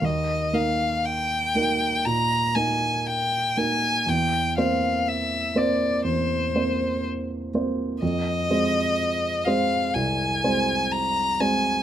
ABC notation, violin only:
X:1
M:4/4
L:1/8
Q:1/4=61
K:Eb
V:1 name="Violin"
e f g2 b a g a | g f =e d c2 z2 | e3 f a2 b a |]